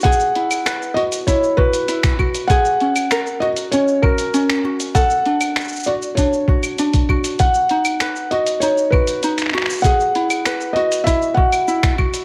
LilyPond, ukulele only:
\new Staff \with { instrumentName = "Ukulele" } { \time 4/4 \key e \lydian \tempo 4 = 98 gis'8 e'8 b'8 fis'8 e'8 fis'8 e'8 fis'8 | gis'8 cis'8 ais'8 fis'8 cis'8 fis'8 cis'8 fis'8 | a'8 d'4 fis'8 d'8 fis'8 d'8 fis'8 | r8 dis'8 b'8 fis'8 dis'8 fis'8 dis'8 fis'8 |
gis'8 e'8 b'8 fis'8 e'8 fis'8 e'8 fis'8 | }